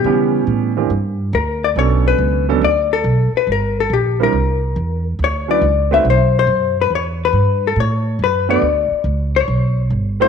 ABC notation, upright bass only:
X:1
M:4/4
L:1/8
Q:"Swing" 1/4=140
K:D
V:1 name="Upright bass" clef=bass
C,2 A,,2 G,,2 D,,2 | B,,,2 C,,2 D,,2 B,,, z | G,,,2 _B,,,2 =C,,2 E,,2 | D,,2 C,,2 B,,,2 F,,2 |
E,,2 G,,2 A,,2 F,,2 | D,, z C,,2 B,,,2 G,,,2 |]